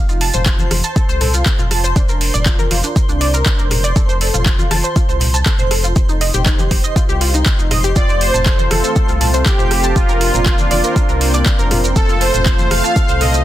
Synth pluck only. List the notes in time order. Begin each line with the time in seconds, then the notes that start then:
0.09 F4
0.21 A5
0.34 C5
0.59 C5
0.84 A5
0.96 A4
1.09 C5
1.21 A4
1.34 F4
1.59 F4
1.71 A5
1.84 C5
1.96 D4
2.09 A#4
2.34 D5
2.46 F4
2.59 A#4
2.71 F4
2.84 D4
3.09 D4
3.21 D5
3.34 A#4
3.46 D4
3.59 A#4
3.84 D5
3.96 A4
4.09 C5
4.21 A4
4.34 F4
4.59 F4
4.71 A5
4.84 C5
4.96 F4
5.09 C5
5.34 A5
5.46 A4
5.59 C5
5.71 A4
5.84 F4
6.09 D#4
6.21 D#5
6.34 G4
6.46 D#4
6.59 G4
6.84 D#5
6.96 F4
7.09 G4
7.21 F4
7.34 D#4
7.59 D#4
7.71 D#5
7.84 G4
7.96 F4
8.09 C5
8.34 A5
8.46 A4
8.59 C5
8.71 A4
8.84 C5
9.09 F4
9.21 A5
9.34 C5
9.46 F4
9.59 C5
9.84 A5
9.96 F4
10.09 A#4
10.21 F4
10.34 A#4
10.59 D4
10.71 D5
10.84 A#4
10.96 D4
11.09 A#4
11.34 D5
11.46 F4
11.59 A#4
11.71 F4
11.84 A#4
12.09 F4
12.21 A5
12.34 C5
12.46 F4
12.59 C5
12.84 A5
12.96 A4
13.09 C5
13.21 A4
13.34 C5